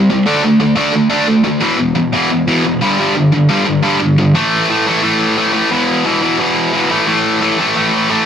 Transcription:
0.10 0.25 C3 medium
0.10 0.25 G3 medium
0.26 0.42 D3 medium
0.26 0.42 A3 medium
0.26 0.43 D4 loud
0.44 0.59 D3 medium
0.44 0.59 A3 medium
0.60 0.74 D3 medium
0.60 0.75 A3 medium
0.76 0.91 D3 loud
0.76 0.91 A3 loud
0.76 0.93 D4 loud
0.92 1.09 D3 medium
0.92 1.09 A3 medium
1.10 1.26 D3 medium
1.10 1.26 A3 medium
1.10 1.27 D4 medium
1.27 1.43 D3 medium
1.27 1.43 A3 medium
1.44 1.60 D3 medium
1.44 1.60 A3 medium
1.61 1.76 E2 medium
1.61 1.77 B2 loud
1.61 1.78 E3 loud
1.78 1.94 E2 medium
1.78 1.94 B2 medium
1.95 2.11 E2 medium
1.95 2.11 B2 medium
2.13 2.29 E2 medium
2.13 2.29 B2 loud
2.13 2.30 E3 loud
2.31 2.46 E2 medium
2.31 2.46 B2 medium
2.48 2.63 E2 medium
2.48 2.64 B2 medium
2.48 2.64 E3 medium
2.65 2.80 E2 medium
2.65 2.80 B2 loud
2.81 2.97 G2 loud
2.81 2.98 D3 loud
2.81 2.98 G3 loud
2.98 3.14 G2 medium
2.98 3.14 D3 medium
2.98 3.15 G3 loud
3.15 3.31 G2 medium
3.15 3.31 D3 medium
3.32 3.48 G2 medium
3.32 3.48 D3 medium
3.49 3.65 G2 medium
3.49 3.65 D3 medium
3.49 3.65 G3 loud
3.66 3.81 G2 medium
3.66 3.82 D3 medium
3.83 3.98 G2 medium
3.83 3.99 D3 medium
3.83 4.00 G3 loud
3.99 4.15 G2 medium
3.99 4.16 D3 medium
4.18 4.33 G2 medium
4.18 4.33 D3 medium
4.35 4.68 A2 medium
4.35 4.69 E3 loud
4.35 4.69 A3 loud
4.69 4.87 A2 medium
4.69 4.88 E3 medium
4.69 4.86 A3 medium
4.87 5.02 A2 medium
4.87 5.03 E3 medium
4.87 5.03 A3 medium
5.03 5.36 A2 medium
5.03 5.37 E3 medium
5.03 5.36 A3 medium
5.37 5.52 A2 medium
5.37 5.53 E3 loud
5.37 5.51 A3 loud
5.53 5.70 A2 medium
5.53 5.71 E3 medium
5.53 5.69 A3 loud
5.70 6.04 E2 medium
5.70 6.04 B2 medium
5.70 6.06 E3 loud
6.05 6.21 E2 medium
6.05 6.21 B2 medium
6.05 6.22 E3 medium
6.22 6.37 E2 medium
6.22 6.38 B2 medium
6.22 6.39 E3 medium
6.39 6.71 E2 medium
6.39 6.72 B2 loud
6.39 6.73 E3 loud
6.72 6.89 E2 medium
6.72 6.89 B2 loud
6.72 6.91 E3 loud
6.91 7.06 A2 medium
6.91 7.07 E3 loud
6.91 7.06 A3 loud
7.07 7.41 A2 medium
7.07 7.41 E3 loud
7.07 7.40 A3 loud
7.41 7.57 A2 medium
7.41 7.58 E3 medium
7.41 7.58 A3 medium
7.58 7.75 A2 medium
7.58 7.75 E3 medium
7.58 7.74 A3 medium
7.75 8.09 A2 medium
7.75 8.10 E3 medium
7.75 8.08 A3 loud
8.10 8.25 A2 medium
8.10 8.26 E3 medium
8.10 8.25 A3 loud

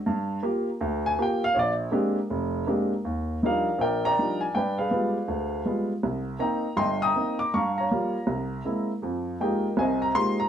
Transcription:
0.06 0.38 G2 medium
0.43 0.68 A#3 medium
0.43 0.69 F4 medium
0.43 0.68 G4 medium
0.81 1.13 D2 medium
1.06 1.18 G#5 loud
1.19 1.43 A#3 medium
1.19 1.44 F4 medium
1.19 1.44 G4 medium
1.19 1.43 G5 medium
1.44 1.56 F5 loud
1.54 1.88 A#1 medium
1.54 1.56 C#5 medium
1.59 1.72 D5 loud
1.91 2.17 G#3 medium
1.91 2.17 A#3 medium
1.91 2.18 C4 medium
1.91 2.18 D4 medium
1.91 2.18 G4 medium
2.30 2.62 F1 medium
2.67 2.92 G#3 medium
2.67 2.92 A#3 medium
2.67 2.93 C4 medium
2.67 2.93 D4 medium
2.67 2.93 G4 medium
3.05 3.37 D#2 medium
3.42 3.68 F3 medium
3.42 3.68 G3 medium
3.42 3.68 D4 soft
3.42 3.68 D#4 medium
3.42 3.81 A#4 medium
3.42 3.81 D5 medium
3.42 3.79 F5 medium
3.78 4.11 A#1 medium
3.78 4.52 A#4 medium
3.78 4.05 G5 medium
3.83 4.05 D5 medium
4.05 4.52 D5 medium
4.05 4.53 G5 medium
4.05 4.39 A#5 loud
4.18 4.43 F3 medium
4.18 4.43 G3 soft
4.18 4.43 D4 soft
4.18 4.43 D#4 medium
4.41 4.55 G#5 medium
4.55 4.87 G2 medium
4.55 4.78 B4 medium
4.55 5.27 D5 medium
4.55 4.77 G5 medium
4.78 5.87 G#4 medium
4.78 5.87 B4 medium
4.78 5.87 F5 medium
4.91 5.17 G3 medium
4.91 5.17 G#3 medium
4.91 5.17 B3 medium
4.91 5.17 F4 medium
5.28 5.61 D2 medium
5.65 5.91 G3 soft
5.65 5.91 G#3 medium
5.65 5.92 B3 soft
5.65 5.92 F4 medium
6.03 6.36 C2 medium
6.39 6.66 A#3 medium
6.39 6.66 C4 soft
6.39 6.66 D#4 medium
6.39 6.78 D#5 medium
6.39 6.78 G5 medium
6.39 6.79 A#5 medium
6.77 7.10 G1 medium
6.77 7.10 G2 medium
6.77 7.50 D#5 medium
6.77 7.02 G5 medium
6.77 7.03 C6 loud
7.02 7.50 G5 medium
7.02 7.51 A#5 medium
7.02 7.37 D#6 loud
7.16 7.41 A#3 soft
7.16 7.41 C4 soft
7.16 7.42 D#4 medium
7.39 7.54 D6 loud
7.54 7.86 G2 medium
7.54 7.78 F5 medium
7.54 7.76 A#5 medium
7.54 7.78 C#6 medium
7.78 8.26 C#5 medium
7.78 8.26 F5 medium
7.78 8.86 A#5 medium
7.91 8.16 G3 medium
7.91 8.17 A#3 medium
7.91 8.17 F4 medium
8.27 8.60 C2 medium
8.65 8.91 G#3 medium
8.65 8.91 A#3 soft
8.65 8.91 C4 soft
8.65 8.91 E4 medium
9.02 9.35 F2 medium
9.02 9.35 F3 medium
9.40 9.66 G#3 medium
9.40 9.66 A#3 soft
9.40 9.66 D#4 medium
9.40 9.66 F4 medium
9.40 9.67 G4 medium
9.40 10.12 A#4 medium
9.40 9.79 D#5 medium
9.40 9.76 G5 medium
9.77 10.10 C2 medium
9.77 10.10 C3 medium
9.77 10.49 D#5 medium
9.77 10.03 G#5 medium
9.81 10.49 C5 medium
10.02 10.16 A#5 medium
10.15 10.40 G#3 medium
10.15 10.41 A#3 soft
10.15 10.41 D#4 soft
10.15 10.41 F4 soft
10.15 10.41 G4 medium
10.15 10.38 C6 loud
10.40 10.45 A#5 medium

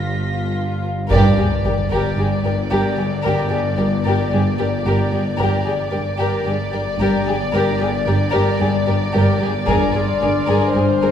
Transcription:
0.00 1.08 G1 medium
0.00 0.87 G2 soft
0.00 0.57 G3 soft
0.00 0.87 F4 soft
0.00 0.53 A#6 soft
0.00 0.53 B6 soft
1.10 1.36 G1 soft
1.10 5.36 G1 medium
1.10 1.43 G2 medium
1.10 1.36 G2 medium
1.10 1.36 G4 medium
1.10 1.35 A#4 soft
1.10 5.36 D5 soft
1.10 taiko soft
1.10 sub drop soft
1.38 1.46 G2 soft
1.38 1.46 G4 soft
1.38 1.46 G#4 soft
1.64 1.73 G1 soft
1.64 1.72 G2 soft
1.64 1.97 G2 soft
1.64 1.73 G4 soft
1.64 1.73 A#4 soft
1.91 1.99 G2 soft
1.91 2.17 G4 soft
1.91 2.16 A#4 soft
2.17 2.26 G1 soft
2.17 2.50 G2 soft
2.17 2.26 G2 soft
2.17 2.27 G4 soft
2.17 2.27 G#4 soft
2.44 2.53 G2 soft
2.44 2.52 G4 soft
2.44 2.53 A#4 soft
2.71 2.80 G1 soft
2.71 3.03 G2 soft
2.71 2.80 G2 soft
2.71 2.96 G4 soft
2.71 2.96 A#4 soft
2.97 3.06 G2 soft
2.97 3.05 G4 soft
2.97 3.05 G#4 soft
3.24 3.33 G1 soft
3.24 3.57 G2 soft
3.24 3.33 G2 soft
3.24 3.50 G4 soft
3.24 3.50 A#4 soft
3.24 6.43 D5 soft
3.51 3.60 G2 soft
3.51 3.59 G4 soft
3.51 3.59 G#4 soft
3.77 3.87 G1 soft
3.77 4.10 G2 soft
3.77 3.87 G2 soft
3.77 3.86 G4 soft
3.77 3.85 A#4 soft
4.05 4.13 G2 soft
4.05 4.30 G4 soft
4.05 4.30 A#4 soft
4.32 4.41 G1 soft
4.32 4.64 G2 soft
4.32 4.40 G2 soft
4.32 4.41 G4 soft
4.32 4.41 G#4 soft
4.59 4.67 G2 soft
4.59 4.67 G4 soft
4.59 4.67 A#4 soft
4.85 4.94 G1 soft
4.85 5.17 G2 soft
4.85 4.94 G2 soft
4.85 5.11 G4 soft
4.85 5.11 A#4 soft
5.12 5.20 G2 soft
5.12 5.21 G4 soft
5.12 5.21 G#4 soft
5.38 9.63 G1 medium
5.38 5.48 G1 soft
5.38 5.71 G2 soft
5.38 5.47 G2 soft
5.38 5.64 G4 soft
5.38 5.64 A#4 soft
5.38 10.71 D5 soft
5.66 5.74 G2 soft
5.66 5.74 G4 soft
5.66 5.74 G#4 soft
5.92 6.01 G1 soft
5.92 6.24 G2 soft
5.92 6.01 G2 soft
5.92 6.00 G4 soft
5.92 6.00 A#4 soft
6.19 6.27 G2 soft
6.19 6.44 G4 soft
6.19 6.45 A#4 soft
6.46 6.55 G1 soft
6.46 6.78 G2 soft
6.46 6.54 G2 soft
6.46 6.54 G4 soft
6.46 6.55 G#4 soft
6.73 6.81 G2 soft
6.73 6.81 G4 soft
6.73 6.82 A#4 soft
6.99 7.08 G1 soft
6.99 7.07 G2 soft
6.99 7.32 G2 soft
6.99 7.26 G4 soft
6.99 7.26 A#4 soft
7.26 7.34 G2 soft
7.26 7.37 G4 soft
7.26 7.36 G#4 soft
7.53 7.61 G1 soft
7.53 7.85 G2 soft
7.53 7.61 G2 soft
7.53 7.79 G4 soft
7.53 7.79 A#4 soft
7.80 7.88 G2 soft
7.80 7.89 G4 soft
7.80 7.89 G#4 soft
8.06 8.15 G1 soft
8.06 8.39 G2 soft
8.06 8.15 G2 soft
8.06 8.16 G4 soft
8.06 8.15 A#4 soft
8.33 8.42 G2 soft
8.33 8.59 G4 soft
8.33 8.58 A#4 soft
8.60 8.69 G1 soft
8.60 8.68 G2 soft
8.60 8.93 G2 soft
8.60 8.70 G4 soft
8.60 8.69 G#4 soft
8.87 8.95 G2 soft
8.87 8.95 G4 soft
8.87 8.95 A#4 soft
9.14 9.23 G1 soft
9.14 9.46 G2 soft
9.14 9.22 G2 soft
9.14 9.39 G4 soft
9.14 9.39 A#4 soft
9.41 9.49 G2 soft
9.41 9.50 G4 soft
9.41 9.50 G#4 soft
9.68 9.76 G1 soft
9.68 11.11 G1 medium
9.68 9.76 G2 soft
9.68 10.00 G2 soft
9.68 9.93 G#4 soft
9.68 9.93 A#4 soft
9.68 11.11 C6 soft
9.68 11.11 F6 soft
9.68 taiko soft
9.95 10.03 G2 soft
9.95 10.03 G#4 soft
10.22 10.30 G1 soft
10.22 10.54 G2 soft
10.22 10.30 G2 soft
10.22 11.11 D4 soft
10.22 10.30 G#4 soft
10.22 10.30 A#4 soft
10.22 11.11 D5 soft
10.47 10.56 G2 soft
10.47 10.73 G#4 soft
10.47 10.73 A#4 soft
10.75 10.84 G1 soft
10.75 11.07 G2 soft
10.75 10.84 G2 soft
10.75 10.84 G#4 soft
10.75 11.11 C5 soft
11.02 11.10 G2 soft
11.02 11.11 G#4 soft
11.02 11.11 A#4 soft

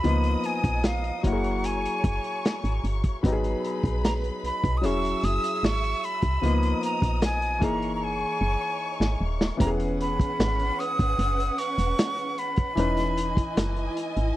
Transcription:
0.00 1.24 F3 medium
0.00 1.24 B3 medium
0.00 0.47 B5 medium
0.04 0.36 C#2 loud
0.04 1.23 A#3 medium
0.04 1.24 D#4 medium
0.04 1.22 D#5 medium
0.04 1.22 D#6 medium
0.04 closed hi-hat medium
0.24 closed hi-hat soft
0.44 0.87 G#5 medium
0.44 closed hi-hat medium
0.64 1.12 A#1 medium
0.64 kick medium
0.64 closed hi-hat soft
0.84 1.25 F5 medium
0.84 snare loud
0.84 closed hi-hat medium
1.04 closed hi-hat soft
1.23 1.87 F#1 medium
1.23 3.19 F#3 medium
1.23 3.19 A#3 medium
1.23 3.20 E4 medium
1.23 1.32 F#4 medium
1.23 3.20 C#5 medium
1.23 1.67 F#5 medium
1.23 3.20 C#6 medium
1.23 kick medium
1.23 closed hi-hat medium
1.33 3.24 G#4 medium
1.44 closed hi-hat soft
1.64 2.84 G#5 medium
1.64 closed hi-hat medium
1.85 closed hi-hat medium
2.04 2.20 F#1 medium
2.04 kick medium
2.04 closed hi-hat medium
2.24 closed hi-hat medium
2.45 snare loud
2.45 closed hi-hat medium
2.64 2.80 G#1 medium
2.64 closed hi-hat soft
2.84 3.15 G1 medium
2.84 closed hi-hat medium
3.04 kick medium
3.04 closed hi-hat soft
3.23 3.55 G#1 loud
3.23 4.79 F#3 medium
3.23 4.80 B3 medium
3.23 4.80 D#4 medium
3.23 3.31 G4 medium
3.23 4.80 B4 medium
3.23 4.80 B5 medium
3.23 kick loud
3.23 closed hi-hat medium
3.33 4.84 G#4 medium
3.44 closed hi-hat soft
3.65 closed hi-hat medium
3.84 4.31 A#1 medium
3.84 kick medium
3.84 closed hi-hat soft
4.04 4.13 A#5 medium
4.04 snare loud
4.04 closed hi-hat medium
4.24 closed hi-hat soft
4.44 4.51 B1 soft
4.44 4.79 B5 medium
4.44 closed hi-hat medium
4.64 4.85 B1 medium
4.64 kick medium
4.64 closed hi-hat soft
4.77 4.87 D#6 medium
4.81 5.15 E1 loud
4.81 6.38 F#3 medium
4.81 6.39 C#4 medium
4.81 6.39 E4 medium
4.81 6.40 G#4 medium
4.81 6.40 E5 medium
4.81 5.26 C#6 medium
4.81 6.40 E6 medium
4.81 closed hi-hat medium
5.05 closed hi-hat medium
5.23 5.39 F#1 medium
5.23 5.67 D#6 medium
5.23 closed hi-hat medium
5.44 closed hi-hat medium
5.63 5.94 G#1 medium
5.63 6.06 C#6 medium
5.63 snare medium
5.63 closed hi-hat medium
5.84 closed hi-hat soft
6.04 6.83 B5 loud
6.04 closed hi-hat medium
6.22 6.38 C2 medium
6.22 kick medium
6.22 closed hi-hat soft
6.41 6.74 C#2 medium
6.41 7.61 F3 medium
6.41 7.59 A#3 medium
6.41 7.61 B3 medium
6.41 7.60 D#4 medium
6.41 7.59 D#5 medium
6.41 7.60 D#6 medium
6.41 closed hi-hat medium
6.63 closed hi-hat soft
6.83 7.20 A#5 medium
6.83 closed hi-hat medium
7.02 7.64 A#1 medium
7.02 kick medium
7.02 closed hi-hat soft
7.22 7.66 G#5 medium
7.22 snare loud
7.22 closed hi-hat medium
7.42 closed hi-hat soft
7.59 8.25 F#1 loud
7.59 9.55 E3 medium
7.59 9.56 A#3 medium
7.59 9.56 D#4 medium
7.59 9.57 G#4 medium
7.59 9.57 C#5 medium
7.59 9.57 C#6 medium
7.59 kick medium
7.59 closed hi-hat medium
7.64 7.95 A#5 medium
7.82 closed hi-hat soft
7.95 8.05 A#5 medium
8.04 9.22 G#5 medium
8.41 8.57 F#1 medium
9.00 9.16 G#1 medium
9.00 snare medium
9.21 9.52 D#1 medium
9.41 snare medium
9.57 10.23 E1 loud
9.57 12.73 E3 medium
9.57 12.73 B3 medium
9.57 12.74 C#4 medium
9.57 9.67 G4 medium
9.57 9.70 A#5 medium
9.57 kick loud
9.57 closed hi-hat medium
9.61 12.75 B4 medium
9.61 12.75 F#5 medium
9.67 12.78 G#4 medium
9.80 closed hi-hat soft
10.01 10.81 B5 medium
10.01 closed hi-hat medium
10.20 kick medium
10.20 closed hi-hat medium
10.40 10.71 G#1 medium
10.40 snare loud
10.40 closed hi-hat medium
10.59 closed hi-hat soft
10.79 11.60 D#6 loud
10.79 closed hi-hat medium
10.99 11.15 G#1 medium
10.99 kick medium
10.99 closed hi-hat soft
11.19 11.50 F#1 medium
11.19 closed hi-hat medium
11.40 closed hi-hat medium
11.58 12.40 C#6 loud
11.58 closed hi-hat medium
11.78 11.94 E1 medium
11.78 closed hi-hat medium
11.99 snare loud
11.99 closed hi-hat medium
12.18 closed hi-hat soft
12.38 13.98 B5 medium
12.38 closed hi-hat medium
12.56 kick medium
12.56 closed hi-hat soft
12.75 13.41 E1 loud
12.75 14.37 E3 medium
12.75 14.37 C#4 medium
12.75 14.37 D#4 medium
12.75 14.37 E4 medium
12.75 14.37 B4 medium
12.75 14.37 D#5 medium
12.75 14.37 G#5 medium
12.75 closed hi-hat medium
12.97 snare soft
12.97 closed hi-hat medium
13.17 closed hi-hat medium
13.37 kick medium
13.37 closed hi-hat medium
13.57 13.89 F#1 medium
13.57 snare loud
13.57 closed hi-hat medium
13.76 closed hi-hat soft
13.97 closed hi-hat medium
14.17 14.33 G#1 medium
14.17 closed hi-hat soft

